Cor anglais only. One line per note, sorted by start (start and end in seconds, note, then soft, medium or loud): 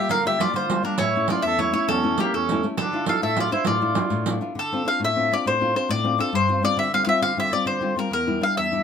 0.11 0.25 A#4 medium
0.27 0.40 G4 medium
0.40 0.53 F4 medium
0.54 0.82 F4 medium
0.86 0.98 D4 medium
1.00 1.28 E4 medium
1.31 1.43 F4 medium
1.46 1.60 A4 medium
1.62 1.74 E4 medium
1.75 1.88 E4 medium
1.91 2.18 C#4 medium
2.22 2.33 A#3 medium
2.36 2.65 C#4 medium
2.78 3.05 D4 medium
3.07 3.20 A4 medium
3.23 3.37 A4 medium
3.40 3.51 F4 medium
3.53 3.65 E4 medium
3.67 4.38 F4 medium